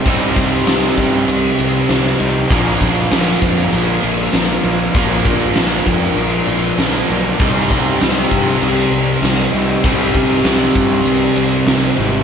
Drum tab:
CC |--------|--------|--------|x-------|
RD |xxxxxxxx|xxxxxxxx|xxxxxxxx|-xxxxxxx|
SD |--o---o-|--o---o-|--o---o-|--o---o-|
BD |oo-o----|oo-o----|oo-o----|oo-o----|

CC |--------|
RD |xxxxxxxx|
SD |--o---o-|
BD |oo-o----|